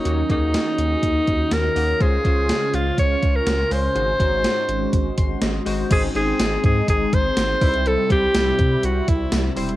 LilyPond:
<<
  \new Staff \with { instrumentName = "Alto saxophone" } { \time 4/4 \key aes \mixolydian \tempo 4 = 123 ees'8 ees'2~ ees'8 bes'4 | aes'4. f'8 des''8. bes'8. c''8~ | c''2. r4 | aes'8 aes'4 aes'8 aes'8 c''4. |
a'8 g'4. ges'8 e'4 r8 | }
  \new Staff \with { instrumentName = "Synth keys" } { \time 4/4 \key aes \mixolydian << { ees4. r2 r8 | des4. r2 r8 | aes,4. r4 c'''8 ees''4 | aes,4. r2 c8~ |
c4 r2. | } \\ { <bes ees' ges' des''>8 <bes ees' ges' aes'>4. r4. <bes ees' ges' ees''>8 | <aes des' f' c''>8 <aes des' f' c''>4. r4. <aes des' f' c''>8 | <aes ees' ges' c''>8 <aes ees' ges' c''>4. r4. <aes ees' ges' c''>8 | <aes c' ees' c''>8 <aes c' ees' c''>4. r4. <g c' e' ces'' c''>8~ |
<g c' e' ces'' c''>8 <g c' e' c''>4. r4. <g c' e' c''>8 | } >> }
  \new Staff \with { instrumentName = "Analog synth pad" } { \time 4/4 \key aes \mixolydian << { <ees ges'>1 | <des f'>1 | <aes ges'>1 | <aes ees'>2.~ <aes ees'>8 <c e'>8~ |
<c e'>1 | } \\ { des'1 | des'1~ | des'1 | c'2.~ c'8 g8~ |
g1 | } >> }
  \new Staff \with { instrumentName = "Analog synth bass" } { \clef bass \time 4/4 \key aes \mixolydian ees,8 ees,8. r16 ees,8 ees,8 ees,8 ees,8 ees,8 | des,8 des,8. r16 des,8 des,8 des,8 des,8 des,8 | aes,,8 aes,,8. r16 aes,,8 aes,,8 aes,,8 aes,,8 aes,,8 | aes,,8 aes,,8 aes,,8 aes,8 aes,,8 aes,,8 aes,,8 c,8~ |
c,8 c,8 c,8 c8 c,8 c,8 c,8 e,,8 | }
  \new DrumStaff \with { instrumentName = "Drums" } \drummode { \time 4/4 hh8 <hh bd>8 <hh sn>8 hh8 <hh bd>8 <hh bd>8 <hh sn>8 hho8 | <hh bd>8 <hh bd>8 <hh sn>8 hh8 <hh bd>8 <hh bd>8 <hh sn>8 hho8 | hh8 <hh bd>8 <hh sn>8 hh8 <hh bd>8 <hh bd>8 <hh sn>8 hho8 | <cymc hh bd>8 hh8 <hh sn tamb>8 <hh bd>8 <hh bd>8 <hh bd>8 <hh sn tamb>8 <hho bd>16 hh16 |
hh8 <hh bd>8 <hh sn tamb>8 <hh bd>8 hh8 <hh bd>8 <hh sn tamb>8 hho16 hh16 | }
>>